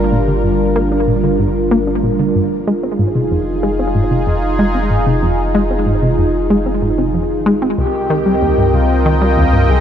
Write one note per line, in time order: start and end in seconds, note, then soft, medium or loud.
0.00 2.64 G1 medium
0.00 2.63 G3 medium
0.00 2.63 D4 medium
0.00 2.63 F4 medium
0.00 2.63 A#4 medium
0.12 0.20 A#2 medium
0.28 0.40 D3 medium
0.44 0.49 G2 medium
0.76 0.81 A#3 loud
0.92 0.97 D4 medium
1.08 1.16 A#2 medium
1.24 1.36 D3 medium
1.39 1.44 G2 medium
1.71 1.76 A#3 loud
1.87 1.92 D4 medium
2.03 2.11 A#2 medium
2.19 2.31 D3 medium
2.35 2.40 G2 medium
2.67 7.75 F1 medium
2.67 2.72 G#3 loud
2.67 7.74 D#4 medium
2.67 7.74 F4 medium
2.67 7.74 G#4 medium
2.83 2.88 C4 medium
2.99 3.07 G#2 medium
3.15 3.27 C3 medium
3.31 3.36 F2 medium
3.63 3.68 G#3 medium
3.79 3.84 C4 medium
3.95 4.03 G#2 medium
4.11 4.23 C3 medium
4.27 4.32 F2 medium
4.59 4.64 G#3 medium
4.75 4.80 C4 medium
4.91 4.99 G#2 medium
5.07 5.19 C3 medium
5.23 5.27 F2 medium
5.55 5.59 G#3 loud
5.71 5.75 C4 medium
5.86 5.94 G#2 medium
6.03 6.14 C3 medium
6.18 6.23 F2 medium
6.50 6.55 G#3 medium
6.66 6.71 C4 medium
6.82 6.90 G#2 medium
6.98 7.10 C3 medium
7.14 7.19 F2 medium
7.46 7.51 G#3 loud
7.62 7.67 C4 medium
7.78 9.80 C2 medium
7.78 7.83 C2 medium
7.78 9.80 C4 medium
7.78 8.76 G4 medium
7.78 9.80 A#4 medium
7.78 9.80 D#5 medium
7.78 9.80 G5 medium
8.10 8.15 D#3 loud
8.26 8.31 G3 medium
8.42 8.50 D#2 medium
8.58 8.70 G2 medium
8.74 8.78 C2 medium
8.74 9.71 F4 medium
9.06 9.10 D#3 medium
9.21 9.26 G3 medium
9.37 9.45 D#2 medium
9.53 9.65 G2 medium
9.69 9.74 C2 medium
9.69 9.80 G#4 loud